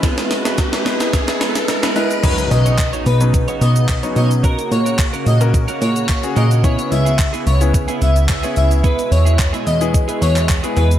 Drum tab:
CC |----------------|x---------------|----------------|----------------|
HH |xxoxxxoxxxoxxxox|xxoxxxoxxxoxxxox|xxoxxxoxxxoxxxox|xxoxxxoxxxoxxxox|
SH |xxxxxxxxxxxxxxxx|xxxxxxxxxxxxxxxx|xxxxxxxxxxxxxxxx|xxxxxxxxxxxxxxxx|
CP |----------------|----x-------x---|----x-------x---|----x-------x---|
SD |oooooooooooooo--|----------------|----------------|----------------|
BD |o---o---o-------|o---o---o---o---|o---o---o---o---|o---o---o---o---|

CC |----------------|
HH |xxoxxxoxxxoxxxox|
SH |xxxxxxxxxxxxxxxx|
CP |----x------xx---|
SD |----------------|
BD |o---o---o---o---|